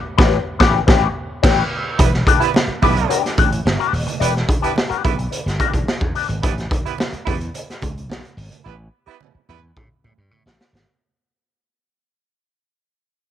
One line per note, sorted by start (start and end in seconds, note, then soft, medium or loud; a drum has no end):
0.18 0.37 A1 loud
0.18 0.38 C#4 loud
0.18 0.37 G4 loud
0.18 0.37 B4 loud
0.18 kick loud
0.18 snare loud
0.59 0.79 A1 loud
0.59 0.79 C#4 medium
0.59 0.79 G4 loud
0.59 0.78 B4 loud
0.59 kick loud
0.59 snare loud
0.87 1.07 A1 loud
0.87 1.07 C#4 loud
0.87 1.07 G4 loud
0.87 1.06 B4 medium
0.87 kick loud
0.87 snare loud
1.43 1.62 A1 loud
1.43 1.62 C#4 loud
1.43 1.62 G4 loud
1.43 1.63 B4 loud
1.43 kick loud
1.43 snare loud
1.43 crash medium
1.98 2.21 E1 loud
1.98 2.08 G3 medium
1.98 2.08 B3 medium
1.98 2.07 E4 medium
1.98 2.08 B4 medium
1.98 kick loud
1.98 closed hi-hat loud
2.14 snare soft
2.26 2.40 D4 medium
2.26 2.41 G4 medium
2.26 2.41 B4 medium
2.26 kick loud
2.26 closed hi-hat medium
2.26 muted conga soft
2.40 2.49 G3 medium
2.40 2.49 B3 medium
2.40 2.49 E4 medium
2.40 2.49 B4 loud
2.40 muted slap bass stroke medium
2.40 closed hi-hat medium
2.54 muted clean electric guitar stroke soft
2.54 snare loud
2.54 high conga medium
2.67 muted slap bass stroke soft
2.82 3.04 B1 medium
2.82 3.18 G3 loud
2.82 3.18 B3 loud
2.82 2.93 D4 medium
2.82 3.18 E4 loud
2.82 2.93 G4 medium
2.82 3.18 B4 loud
2.82 2.93 B4 medium
2.82 kick medium
2.82 open hi-hat medium
2.82 low conga medium
2.97 closed hi-hat soft
3.09 3.30 D4 medium
3.09 3.23 G4 medium
3.09 3.22 B4 loud
3.09 closed hi-hat loud
3.09 muted conga soft
3.23 muted clean electric guitar stroke soft
3.23 snare soft
3.23 closed hi-hat soft
3.38 3.60 A1 medium
3.38 3.48 D4 medium
3.38 3.49 G4 medium
3.38 3.49 B4 medium
3.38 kick medium
3.38 closed hi-hat medium
3.38 muted conga medium
3.38 low conga medium
3.52 muted clean electric guitar stroke soft
3.52 closed hi-hat soft
3.65 3.76 G1 medium
3.65 muted clean electric guitar stroke soft
3.65 snare loud
3.65 high conga loud
3.79 3.92 D4 medium
3.79 3.93 G4 medium
3.79 3.93 B4 medium
3.79 closed hi-hat soft
3.93 4.04 D#1 medium
3.93 open hi-hat medium
3.93 high conga soft
4.07 muted clean electric guitar stroke medium
4.07 closed hi-hat soft
4.07 high conga medium
4.20 4.43 E1 loud
4.20 4.30 G3 medium
4.20 4.30 B3 medium
4.20 4.34 D4 medium
4.20 4.30 E4 medium
4.20 4.35 G4 medium
4.20 4.30 B4 medium
4.20 4.34 B4 medium
4.20 closed hi-hat loud
4.35 muted clean electric guitar stroke soft
4.35 snare soft
4.47 muted clean electric guitar stroke soft
4.47 kick loud
4.47 closed hi-hat medium
4.61 4.71 G3 medium
4.61 4.71 B3 medium
4.61 4.73 D4 medium
4.61 4.71 E4 medium
4.61 4.73 G4 medium
4.61 4.73 B4 medium
4.61 4.71 B4 loud
4.61 muted slap bass stroke medium
4.61 closed hi-hat medium
4.75 muted clean electric guitar stroke soft
4.75 snare loud
4.75 high conga medium
4.89 5.02 D4 medium
4.89 5.03 G4 medium
4.89 5.03 B4 medium
4.89 muted slap bass stroke soft
4.89 closed hi-hat soft
5.03 5.26 B1 medium
5.03 5.13 G3 medium
5.03 5.13 B3 loud
5.03 5.13 E4 loud
5.03 5.13 B4 loud
5.03 muted clean electric guitar stroke soft
5.03 kick medium
5.03 closed hi-hat medium
5.03 low conga medium
5.18 muted clean electric guitar stroke soft
5.18 closed hi-hat medium
5.31 muted clean electric guitar stroke soft
5.31 closed hi-hat medium
5.31 muted conga soft
5.45 5.57 G1 medium
5.45 muted clean electric guitar stroke soft
5.45 snare soft
5.45 closed hi-hat soft
5.59 5.79 D4 medium
5.59 5.73 G4 loud
5.59 5.72 B4 loud
5.59 kick loud
5.59 closed hi-hat medium
5.59 muted conga medium
5.59 low conga medium
5.73 5.85 E1 medium
5.73 muted clean electric guitar stroke soft
5.73 kick medium
5.73 closed hi-hat medium
5.87 muted clean electric guitar stroke soft
5.87 snare loud
5.87 high conga medium
6.01 6.12 E2 medium
6.01 kick loud
6.14 6.25 D4 medium
6.14 6.26 G4 medium
6.14 6.26 B4 medium
6.14 open hi-hat medium
6.14 high conga soft
6.29 6.40 G#1 medium
6.29 muted clean electric guitar stroke soft
6.29 closed hi-hat medium
6.29 high conga medium
6.43 6.65 A1 loud
6.43 6.52 G3 medium
6.43 6.52 B3 medium
6.43 6.52 E4 medium
6.43 6.52 B4 medium
6.43 kick loud
6.43 closed hi-hat loud
6.58 snare soft
6.58 closed hi-hat soft
6.71 kick loud
6.71 closed hi-hat medium
6.71 muted conga soft
6.84 6.94 G3 medium
6.84 6.94 B3 medium
6.84 6.94 E4 medium
6.84 6.94 B4 medium
6.84 muted slap bass stroke soft
6.84 closed hi-hat medium
6.98 snare loud
6.98 high conga medium
7.13 muted slap bass stroke medium
7.13 closed hi-hat soft
7.25 7.49 E2 medium
7.25 7.35 G3 loud
7.25 7.35 B3 medium
7.25 7.35 E4 loud
7.25 7.35 B4 loud
7.25 kick medium
7.25 open hi-hat medium
7.25 low conga medium
7.41 closed hi-hat medium
7.54 closed hi-hat loud
7.54 muted conga soft
7.70 snare soft
7.70 closed hi-hat soft
7.82 8.04 C#2 medium
7.82 kick medium
7.82 closed hi-hat medium
7.82 muted conga medium
7.82 low conga medium
7.98 closed hi-hat soft
8.09 8.20 B1 medium
8.09 snare loud
8.09 high conga medium
8.25 closed hi-hat soft
8.37 8.48 G#1 loud
8.37 open hi-hat medium
8.37 high conga soft
8.51 closed hi-hat medium
8.51 high conga medium
8.64 8.87 A1 medium
8.64 8.73 G3 medium
8.64 8.73 B3 medium
8.64 8.73 E4 medium
8.64 8.73 B4 medium
9.06 9.15 G3 medium
9.06 9.15 B3 medium
9.06 9.15 E4 medium
9.06 9.15 B4 loud
9.06 muted slap bass stroke soft
9.21 high conga medium
9.35 muted slap bass stroke medium
9.48 9.71 E2 medium
9.48 9.57 G3 loud
9.48 9.57 B3 loud
9.48 9.57 E4 loud
9.48 9.57 B4 loud
9.48 low conga medium
9.77 9.88 A2 medium
9.77 kick medium
9.77 muted conga soft
10.04 10.15 A2 loud
10.04 muted conga medium
10.04 low conga medium
10.18 10.31 G2 medium
10.31 10.42 A2 medium
10.31 high conga medium
10.46 10.57 A1 medium
10.46 snare medium
10.61 snare loud
10.73 10.84 G#1 medium
10.73 snare medium
10.73 high conga medium